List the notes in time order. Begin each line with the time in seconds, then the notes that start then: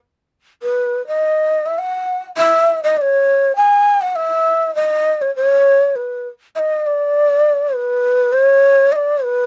0.63 B4
1.07 D#5
1.66 E5
1.78 F#5
2.37 E5
2.83 D#5
2.97 D5
3.01 C#5
3.56 G#5
4.01 F#5
4.15 E5
4.75 D#5
5.21 C#5
5.36 C#5
5.95 B4
6.55 D#5 E5
6.86 D5
7.74 B4
8.33 C#5
8.92 D5 D#5
9.24 B4